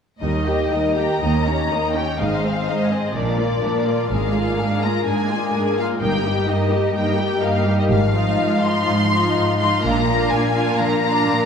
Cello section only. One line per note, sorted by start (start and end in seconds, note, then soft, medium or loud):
0.21 0.65 D#2 soft
0.72 1.16 D#2 soft
1.22 1.65 D#2 soft
1.71 2.14 D#2 soft
2.19 2.62 G#2 soft
2.67 3.09 G#2 soft
3.15 3.58 A#2 soft
3.63 4.06 A#2 soft
4.11 4.53 G#2 soft
4.58 5.00 G#2 soft
5.06 5.48 G#2 soft
5.54 5.96 G#2 soft
6.01 6.43 G2 soft
6.48 6.90 G2 soft
6.96 7.37 G2 soft
7.42 7.84 G2 soft
7.89 8.32 G#2 soft
8.38 8.82 G#2 soft
8.88 9.30 G#2 soft
9.36 9.77 G#2 soft
9.83 10.25 A#2 medium
10.31 10.74 A#2 soft
10.79 11.22 A#2 soft
11.27 11.45 A#2 medium